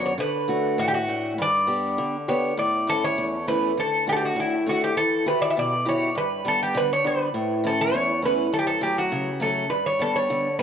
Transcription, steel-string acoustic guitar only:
0.00 0.17 F#2 medium
0.00 0.12 B3 soft
0.00 0.13 D4 soft
0.00 0.13 F#4 soft
0.18 0.76 D3 medium
0.48 0.96 A3 soft
0.48 0.96 D4 soft
0.48 0.97 F#4 medium
0.78 1.36 A2 medium
1.08 1.32 A3 soft
1.08 1.32 D4 soft
1.08 1.32 F#4 soft
1.38 1.96 G2 medium
1.67 2.15 B3 soft
1.67 2.15 D4 soft
1.67 2.16 G4 medium
1.98 2.56 D3 medium
2.28 2.52 B3 soft
2.28 2.52 D4 soft
2.28 2.52 G4 medium
2.57 3.15 A2 medium
2.87 3.35 A3 soft
2.87 3.35 C#4 soft
2.87 3.35 E4 soft
3.18 3.75 E2 medium
3.47 3.71 A3 medium
3.47 3.71 C#4 soft
3.47 3.71 E4 medium
3.77 4.35 D3 soft
4.07 4.54 A3 soft
4.07 4.54 D4 soft
4.07 4.55 F#4 medium
4.36 4.94 A2 medium
4.66 4.90 A3 soft
4.66 4.90 D4 soft
4.66 4.90 F#4 soft
4.97 5.54 E3 medium
5.26 5.73 E4 soft
5.26 5.74 F#4 soft
5.26 5.74 G4 medium
5.57 6.14 B2 medium
5.85 6.09 E4 soft
5.85 6.09 F#4 soft
5.85 6.09 G4 medium
6.15 6.72 G2 medium
6.45 6.92 G3 soft
6.45 6.92 B3 soft
6.45 6.93 D4 soft
6.74 7.32 D3 medium
7.04 7.28 G3 soft
7.04 7.28 B3 soft
7.04 7.28 D4 medium
7.34 7.91 A2 medium
7.64 8.11 E3 soft
7.64 8.11 A3 soft
7.64 8.11 C#4 soft
7.94 8.51 E2 medium
8.22 8.46 E3 soft
8.22 8.46 A3 soft
8.22 8.47 C#4 medium
8.53 9.10 F#2 soft
8.81 9.29 F#3 soft
8.81 9.29 A3 soft
8.81 9.29 C#4 soft
9.12 9.69 C#3 medium
9.40 9.64 F#3 soft
9.40 9.64 A3 soft
9.40 9.65 C#4 medium
9.70 10.27 G2 medium
9.99 10.47 G3 soft
9.99 10.47 B3 soft
9.99 10.47 D4 medium
10.30 10.63 D3 medium
10.59 10.63 G3 medium
10.59 10.63 B3 soft

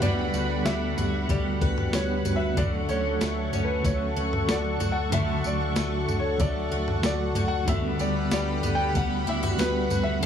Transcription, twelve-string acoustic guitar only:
0.00 2.57 D3 medium
0.00 1.29 G3 medium
0.00 0.66 D4 medium
0.00 0.33 F#4 medium
0.00 1.60 B4 medium
0.34 0.98 F#4 medium
0.66 2.88 D4 medium
0.98 1.93 F#4 medium
1.30 2.64 G3 medium
1.62 2.24 B4 medium
1.94 4.16 F#4 medium
2.25 2.63 B4 medium
2.57 5.12 D3 medium
2.89 3.52 C#4 medium
3.21 3.83 A3 medium
3.53 4.49 C#4 medium
3.85 5.74 A3 medium
4.16 4.80 F#4 medium
4.80 6.71 F#4 medium
5.12 7.67 D3 loud
5.76 6.38 A3 medium
6.40 7.74 A3 medium
6.72 7.35 F#4 medium
7.36 8.34 F#4 medium
7.68 10.22 D3 medium
7.99 8.63 B3 medium
8.31 8.94 G3 medium
8.63 9.58 B3 medium
8.95 10.26 G3 medium
9.27 9.43 E4 medium
9.43 9.89 F#4 medium
9.59 10.26 B3 medium
9.90 10.26 F#4 medium
10.23 10.26 D3 medium

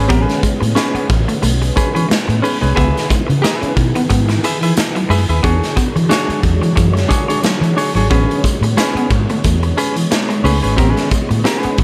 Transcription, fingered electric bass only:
0.10 0.25 A1 loud
0.43 muted fingered electric bass stroke soft
0.62 0.74 A2 loud
0.94 muted fingered electric bass stroke medium
1.10 1.25 A1 loud
1.43 1.70 B1 medium
2.29 2.40 A2 loud
2.62 2.74 C2 medium
2.77 2.92 C#2 loud
3.10 muted fingered electric bass stroke medium
3.30 3.41 C#3 medium
3.63 muted fingered electric bass stroke soft
3.77 3.92 B2 medium
4.11 4.37 G#2 loud
5.10 5.25 F#2 medium
5.29 5.41 D#2 medium
5.44 5.59 E2 loud
5.77 muted fingered electric bass stroke soft
5.96 6.07 E3 medium
6.29 muted fingered electric bass stroke soft
6.43 6.58 E2 loud
6.77 7.04 F#2 loud
7.61 7.73 E3 loud
7.95 8.07 G#1 medium
8.11 8.25 A1 loud
8.44 muted fingered electric bass stroke soft
8.61 8.73 A2 medium
8.95 muted fingered electric bass stroke soft
9.10 9.26 G#2 medium
9.45 9.71 E2 medium
10.44 10.59 C#2 loud
10.63 10.75 G#1 medium
10.78 10.93 A1 medium
11.11 muted fingered electric bass stroke soft
11.31 11.42 A2 medium
11.65 muted fingered electric bass stroke medium
11.78 11.84 A1 medium

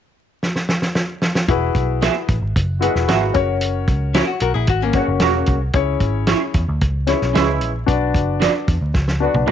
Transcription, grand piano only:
1.48 2.33 E4 medium
1.48 2.33 F#4 medium
1.48 2.34 G#4 medium
1.48 2.34 B4 medium
2.81 3.34 E4 medium
2.81 3.33 F#4 medium
2.81 3.35 G#4 medium
2.81 3.35 B4 medium
3.34 4.20 C#4 medium
3.34 4.20 F#4 medium
3.34 4.20 A#4 medium
3.34 4.20 C#5 medium
4.95 5.58 C#4 medium
4.95 5.58 F#4 medium
4.95 5.58 A#4 medium
4.95 5.59 C#5 medium
5.74 6.59 C#4 medium
5.74 6.59 E4 medium
5.74 6.59 G#4 medium
5.74 6.59 C#5 medium
7.07 7.70 C#4 medium
7.07 7.71 E4 medium
7.07 7.71 G#4 medium
7.07 7.71 C#5 medium
7.86 8.71 D4 medium
7.86 8.71 F#4 medium
7.86 8.72 B4 medium
7.86 8.72 D5 medium
9.20 9.51 D4 medium
9.20 9.51 F#4 medium
9.20 9.51 B4 medium
9.20 9.51 D5 medium

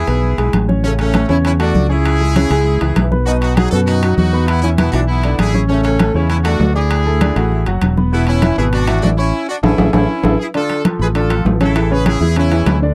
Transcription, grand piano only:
0.07 0.33 B3 medium
0.07 0.33 B4 medium
0.38 0.63 G#3 medium
0.38 0.63 G#4 medium
0.68 0.81 C#4 medium
0.68 0.81 C#5 medium
0.83 1.09 C#3 medium
0.83 1.09 C#4 medium
0.83 1.09 C#5 medium
1.14 1.26 A3 medium
1.14 1.27 A4 medium
1.14 1.27 A5 medium
1.29 1.54 C#3 medium
1.29 1.54 C#4 medium
1.29 1.55 C#5 medium
1.60 1.85 A3 medium
1.60 1.85 A4 medium
1.60 1.85 A5 medium
1.90 2.15 C#4 medium
1.90 2.15 C#5 medium
1.90 2.15 C#6 medium
2.21 2.33 G#3 medium
2.21 2.33 G#4 medium
2.21 2.33 G#5 medium
2.36 2.48 C#3 medium
2.36 2.48 C#4 medium
2.36 2.48 C#5 medium
2.51 2.76 G#3 medium
2.51 2.76 G#4 medium
2.51 2.76 G#5 medium
2.81 3.06 E3 medium
2.81 3.06 E4 medium
2.81 3.07 E5 medium
3.11 3.24 B3 medium
3.11 3.24 B4 medium
3.11 3.24 B5 medium
3.26 3.51 B2 medium
3.26 3.52 B3 medium
3.26 3.52 B4 medium
3.57 3.69 F#3 medium
3.57 3.70 F#4 medium
3.57 3.70 F#5 medium
3.72 3.97 B2 medium
3.72 3.97 B3 medium
3.72 3.97 B4 medium
4.02 4.27 F#3 medium
4.02 4.28 F#4 medium
4.02 4.28 F#5 medium
4.33 4.58 B3 medium
4.33 4.58 B4 medium
4.33 4.58 B5 medium
4.64 4.76 E3 medium
4.64 4.76 E4 medium
4.64 4.76 E5 medium
4.79 4.91 B2 medium
4.79 4.91 B3 medium
4.79 4.91 B4 medium
4.94 5.19 E3 medium
4.94 5.19 E4 medium
4.94 5.19 E5 medium
5.24 5.49 D3 medium
5.24 5.49 D4 medium
5.24 5.49 D5 medium
5.54 5.67 C#4 medium
5.54 5.67 C#5 medium
5.54 5.67 C#6 medium
5.69 5.94 C#3 medium
5.69 5.94 C#4 medium
5.69 5.95 C#5 medium
6.00 6.12 A3 medium
6.00 6.12 A4 medium
6.00 6.13 A5 medium
6.15 6.40 C#3 medium
6.15 6.40 C#4 medium
6.15 6.40 C#5 medium
6.45 6.70 A3 medium
6.45 6.70 A4 medium
6.45 6.70 A5 medium
6.75 7.00 D4 medium
6.75 7.01 D5 medium
6.75 7.01 D6 medium
7.06 7.19 A3 medium
7.06 7.19 A4 medium
7.06 7.19 A5 medium
7.22 7.34 D3 medium
7.22 7.34 D4 medium
7.22 7.34 D5 medium
7.36 7.61 A3 medium
7.36 7.62 F#4 medium
7.36 7.62 F#5 medium
7.67 7.92 F#3 medium
7.67 7.92 F#4 medium
7.67 7.92 F#5 medium
7.97 8.10 B3 medium
7.97 8.10 B4 medium
7.97 8.10 B5 medium
8.12 8.37 B2 medium
8.12 8.37 B3 medium
8.12 8.38 B4 medium
8.43 8.55 E3 medium
8.43 8.55 E4 medium
8.43 8.55 E5 medium
8.58 8.83 B2 medium
8.58 8.83 B3 medium
8.58 8.83 B4 medium
8.88 9.13 E3 medium
8.88 9.13 E4 medium
8.88 9.13 E5 medium
9.18 9.31 C#4 medium
9.18 9.31 C#5 medium
9.18 9.31 C#6 medium
9.63 9.73 E4 medium
9.63 9.73 G#4 medium
9.63 9.73 A4 medium
9.78 9.88 E4 medium
9.78 9.88 G#4 loud
9.78 9.88 A4 medium
9.93 10.03 E4 medium
9.93 10.03 G#4 medium
9.93 10.03 A4 medium
10.24 10.34 E4 medium
10.24 10.34 G#4 medium
10.24 10.34 A4 medium
10.54 10.79 D3 medium
10.54 10.80 D4 medium
10.54 10.80 D5 medium
10.85 11.10 F3 medium
10.85 11.10 F4 medium
10.85 11.10 A4 medium
11.15 11.27 D3 medium
11.15 11.28 D4 medium
11.15 11.28 D5 medium
11.30 11.55 F3 medium
11.30 11.55 F4 medium
11.30 11.55 A4 medium
11.60 11.73 C#3 medium
11.60 11.73 C#4 medium
11.60 11.73 C#5 medium
11.75 11.88 E3 medium
11.75 11.88 E4 medium
11.75 11.88 G#4 medium
11.91 12.16 C#3 medium
11.91 12.16 C#4 medium
11.91 12.16 C#5 medium
12.21 12.34 E3 medium
12.21 12.34 E4 medium
12.21 12.34 G#4 medium
12.36 12.49 C#3 medium
12.36 12.49 C#4 medium
12.36 12.49 C#5 medium
12.52 12.77 E3 medium
12.52 12.77 E4 medium
12.52 12.77 G#4 medium
12.82 12.94 D3 medium
12.82 12.94 D4 medium
12.82 12.94 D5 medium

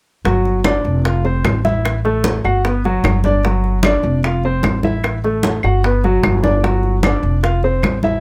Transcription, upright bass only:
0.25 0.81 G1 medium
0.84 1.41 F1 medium
1.45 2.39 A1 medium
2.44 3.00 G1 medium
3.04 3.98 G1 medium
4.04 4.60 F1 medium
4.64 5.58 A1 medium
5.64 6.20 G1 medium
6.23 7.17 G1 medium
7.23 7.79 F1 medium
7.82 8.20 A1 medium

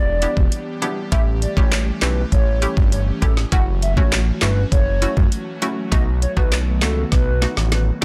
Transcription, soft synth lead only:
0.00 0.34 D5 loud
1.12 1.22 E5 loud
1.42 1.52 D5 medium
1.57 1.77 C#5 medium
2.02 2.22 B4 medium
2.32 2.74 C#5 loud
2.92 3.02 C#5 medium
3.22 3.32 A4 medium
3.52 3.62 F#5 loud
3.82 3.92 E5 medium
3.97 4.17 C#5 medium
4.42 4.62 B4 medium
4.72 5.14 C#5 loud
5.92 6.02 D#5 loud
6.22 6.32 C#5 medium
6.37 6.57 B4 medium
6.82 7.02 A4 medium
7.12 7.55 B4 loud
7.73 7.82 B4 medium

